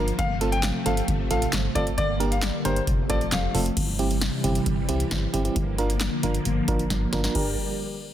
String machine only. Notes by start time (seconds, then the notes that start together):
Already playing: D3 F3 A#3
0.19 C3 A3
1.98 D3 G3 A#3
2.87 C3 F3 A3
3.77 C3 E3 G3
5.56 D3 F3 A#3
7.35 G3 G4 A#4 D5